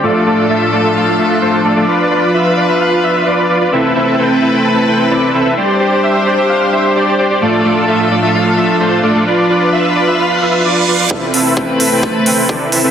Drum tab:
HH |--------|--------|--------|--------|
BD |--------|--------|--------|--------|

HH |--------|--------|-o-o-o-o|
BD |--------|--------|o-o-o-o-|